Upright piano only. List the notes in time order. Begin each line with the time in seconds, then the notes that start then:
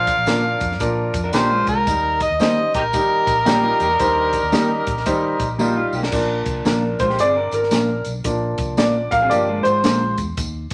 Already playing: F3 D4 C5
0.27 F3 D4 A#4
0.80 F3 D4 A#4
1.33 F3 D4 A#4
1.87 G3 D#4 A#4
2.40 G3 D#4 C5
2.93 G3 D#4 G4
3.45 G3 D#4 G4
3.99 D#3 G3 C5
4.52 G3 D#4 A#4
5.06 G3 D#4 C5
5.59 G3 D#4 F4
6.12 F3 A#3 D4
6.66 A#4
7.00 C5
7.20 D5
7.54 A#4
8.24 F3 A#3 D4
8.78 D5
9.11 F5
9.29 F3 A#3 D4 D5
9.63 C5